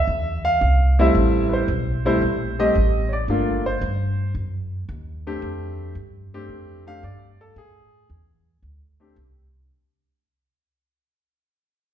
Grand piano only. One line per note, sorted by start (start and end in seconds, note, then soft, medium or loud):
0.00 0.42 E5 medium
0.45 0.94 F5 medium
0.99 1.65 G3 medium
0.99 1.65 A3 medium
0.99 1.65 C4 medium
0.99 1.66 E4 medium
0.99 1.49 E5 medium
1.49 1.51 B4 medium
1.53 2.05 C5 medium
2.05 2.20 G3 medium
2.05 2.20 A3 medium
2.05 2.20 C4 medium
2.05 2.20 E4 medium
2.05 2.56 C5 medium
2.59 2.74 G3 medium
2.59 2.74 A3 medium
2.59 2.74 C4 medium
2.59 2.74 G4 medium
2.59 3.09 D#5 medium
3.09 3.11 C#5 medium
3.13 3.62 D5 medium
3.29 3.62 A3 medium
3.29 3.62 A#3 medium
3.29 3.62 D4 medium
3.29 3.62 F4 medium
3.66 4.32 C5 medium
5.27 5.93 A3 medium
5.27 5.93 C4 medium
5.27 5.93 D4 medium
5.27 5.93 G4 medium
6.34 6.83 A3 medium
6.34 6.83 C4 medium
6.34 6.83 D4 medium
6.34 6.83 G4 medium
6.87 7.01 A3 medium
6.87 7.01 C4 medium
6.87 7.02 D4 medium
6.87 7.02 G4 medium
6.87 7.03 F5 loud
7.04 7.39 D5 medium
7.41 7.57 A4 medium
7.58 8.07 G#4 medium
9.00 9.15 A3 medium
9.00 9.15 C4 medium
9.00 9.16 D4 medium
9.00 9.16 G4 medium